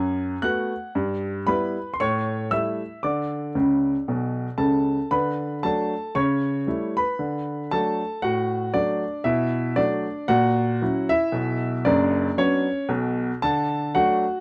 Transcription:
Already playing: F#2 G#5 G#6
0.42 A3 B3 F#4 F#5 F#6
0.95 G2
1.47 G3 B3 E4 B4 B5
1.94 C6
2.00 A2 C#5 C#6
2.51 G3 A3 E4 E5 E6
3.03 D3 D5 D6
3.55 C#2 C#3
4.08 B1 B2
4.58 C#2 C#3 A4 A5
5.11 D3 B4 B5
5.63 F#3 A3 D4 A4 A5
6.15 C#3 C#5 C#6
6.67 G3 A3 E4
6.97 B4 B5
7.19 D3
7.71 F#3 A3 D4 A4 A5
8.22 A2 F#4 F#5
8.74 F#3 A3 D4 D5
9.24 B2 E4 E5
9.76 F#3 A3 D4 D5
10.28 A#2 F#4 F#5
10.82 F#3 C#4 E4
11.09 E4 E5
11.32 B1 B2
11.85 F#1 F#2 D4 D5
12.37 F#3 B3 C#4 D4 C#5
12.89 B1 B2
13.42 D3 A4 A5
13.95 F#3 A3 D4 F#4 F#5

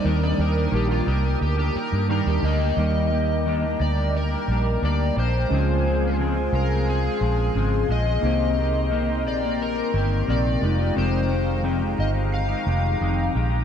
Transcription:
Already playing: G3 D4 D#4 A#4 G5 D6 D#6
0.04 D#2 D#3 G3 A#3 D4 G4 A#4
0.23 D5
0.37 D#2 G3 A#3 D4 A#4
0.41 G4
0.54 D4 G4
0.58 A#3
0.71 A#1 D#3 G3 A#3 D4 G4
0.75 G4
0.91 F4
1.05 C2 G3 A#3 D4 G4 A#4
1.23 A#3 D4 G4
1.41 D2 G4
1.57 A#3 D4 G4
1.75 A#4, muted fingered electric bass stroke
1.91 G2 A#3 D4 G4
2.08 D#3 G3 A#3 D4 D#4 G4 A#4
2.26 D#2 G4
2.42 D2 G3 A#3 D4 D#5
2.46 G4
2.60 A#3 D4 G4
2.76 D#2 D#3 G3 A#3 D#4 G4 A#4 G5 A#5 D6
2.81 A#4
3.11 G3 A#3 G4
3.46 D#3 G3 A#3 D4 G4
3.63 A#3 D4 G4
3.80 D2 D5
3.97 A#3 D4 G4
4.17 A#4
4.31 A#3 D4 G4
4.48 A#1 G3 A#3 D4
4.52 G4
4.82 D2 G3 A#3 D4 G4 D5
5.16 A#1 G3 A#3 D4 G4 C5
5.34 A#3 D4 G4
5.48 C#2 C#3 G#3 C#4 D#4 G#4 F5 G#5 C6
5.53 F3 G#3 C4 G#4 C5
5.59 F4
5.85 F3 G#3 C4 G#4
6.19 C#3 F3 G#3 C4 G#4
6.37 G#3 C4 G#4
6.53 C2 A#4
6.70 G#3 C4 G#4
6.89 G#4
7.04 G#3 C4 G#4
7.21 A#1 F3 G#3 C4 G#4
7.55 G#1 C#3 F3 G#3 C4 G#4
7.88 A#1 F3 G#3 C4 G#4 D#5
8.06 G#3 C4 G#4
8.21 C2 C3 D#3 A#3 C4 D#4 G4 A#4 G5 A#5
8.25 G4 C5
8.57 D#3 A#3 C4 G4
8.91 C3 D#3 A#3 C4 G4
9.08 A#3 C4 G4
9.26 A#1 D5
9.41 C4 G4
9.45 A#3
9.62 A#4
9.76 C4 G4
9.80 A#3
9.93 G1 D#3 A#3 C4 G4
10.27 A#1 C3 D#3 A#3 C4 G4 D5
10.60 F1 D#3 G#3 F4 G4 F5
10.64 D#4 G4
10.78 D#3 G#3 D#4 G4
10.95 F1 F2 C3 D#3 G#3 D#4 G4 C5
11.29 D#3 G#3 D#4 G4
11.63 F2 C3 D#3 G#3 D#4 G4
11.79 G#3 D#4 G4
11.83 D#3
11.99 G1 D#5
12.14 D#3 G#3 D#4 G4
12.34 F5
12.48 D#3 G#3 D#4 G4
12.65 F1 D#3 G#3 D#4 G4
12.99 F1 F2 C3 D#3 G#3 D#4 G4
13.33 A#1 D#3 G#3 D#4 G4
13.50 G#3 D#4 G4
13.54 D#3

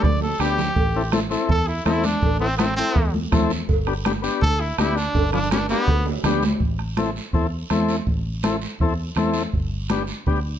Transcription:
0.03 D2 D5, bombo low, cowbell, low conga, low timbale, long guiro
0.21 A4, low timbale
0.40 D2 B3 D4 G4, bombo rim, cowbell, low timbale, short guiro
0.58 low conga, low timbale, short guiro
0.76 A1, bombo low, cowbell, high conga, long guiro
0.96 C4 E4 A4
1.12 C4 E4 A4, bombo rim, cowbell, high conga, short guiro
1.30 C4 E4 A4, short guiro
1.49 E2 A4, bombo low, cowbell, high conga, long guiro
1.67 E4
1.85 E2 C4 E4 A4, bombo rim, cowbell, high conga, short guiro
2.04 D4, high conga, short guiro
2.22 A1, bombo low, cowbell, high conga, long guiro
2.40 C4 E4 A4
2.58 C4 E4 A4, bombo rim, cowbell, high conga, short guiro
2.76 C4 E4 A4, short guiro
2.95 E2, bombo low, cowbell, high conga, long guiro
3.14 high conga
3.32 E2 C4 E4 A4, bombo low, bombo rim, cowbell, high conga, low conga, low timbale, short guiro
3.50 short guiro
3.69 G1, bombo low, cowbell, high conga, long guiro
3.87 B3 D4 G4, bombo rim
4.05 B3 D4 G4, bombo rim, cowbell, high conga, short guiro
4.22 B3 D4 G4, short guiro
4.42 D2 A4, bombo low, cowbell, high conga, long guiro
4.60 E4
4.78 D2 B3 D4 E4 G4, bombo rim, cowbell, high conga, short guiro
4.96 D4, short guiro
5.15 G1, bombo low, cowbell, high conga, high timbale, long guiro
5.32 B3 D4 F4, bombo rim, low conga
5.51 B3 D4 G4, bombo rim, cowbell, high conga, high timbale, short guiro
5.69 B3 D4 G4, low timbale, short guiro
5.87 D2, bombo low, cowbell, high conga, low timbale, long guiro
6.06 low timbale
6.24 D2 B3 D4 G4, bombo rim, cowbell, high conga, low conga, low timbale, short guiro
6.43 high conga, low timbale, short guiro
6.60 A1, bombo low, high conga, long guiro
6.79 bombo rim
6.97 C4 E4 A4, bombo rim, high conga, short guiro
7.16 short guiro
7.33 E2 C4 E4 A4, bombo low, high conga, long guiro
7.70 E2 C4 E4 A4, bombo rim, high conga, short guiro
7.88 short guiro
8.07 A1, bombo low, high conga, long guiro
8.43 C4 E4 A4, bombo rim, high conga, short guiro
8.62 short guiro
8.79 E2 C4 E4 A4, bombo low, high conga, long guiro
9.15 E2 C4 E4 A4, bombo rim, high conga, short guiro
9.34 short guiro
9.52 G1, bombo low, high conga, long guiro
9.88 B3 D4 G4, bombo rim, high conga, short guiro
10.07 short guiro
10.26 D2 B3 D4 G4, bombo low, high conga, long guiro

